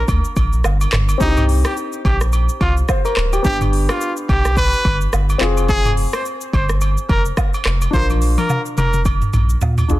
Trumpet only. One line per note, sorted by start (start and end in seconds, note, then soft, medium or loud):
1.21 1.45 D#4 loud
1.65 1.75 G4 medium
2.05 2.19 G4 medium
2.61 2.75 F4 medium
3.45 3.59 G4 loud
3.90 4.13 F4 medium
4.30 4.53 G4 medium
4.58 4.99 B4 loud
5.69 5.93 G#4 loud
6.14 6.24 C5 medium
6.54 6.67 C5 medium
7.10 7.23 A#4 medium
7.94 8.08 C5 loud
8.38 8.62 A#4 medium
8.78 9.02 A#4 medium